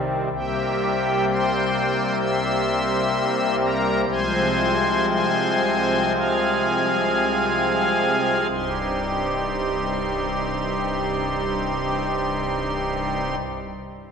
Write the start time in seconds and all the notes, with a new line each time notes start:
Already playing: C2 C3 D#3 G3 C4
0.33 C2 C3 G3 A#3 C4 G4 E5 G5
1.28 C5 G5 C6
2.20 E5 C6 E6
3.60 A#4 A#5
4.08 C2 C3 F3 G#3 C4 C5 G#5 C6
5.08 C5 G#5 C6
6.15 G#4 F5 G#5
8.51 C1 C2 G2 G3 C4 D#4 G4 C6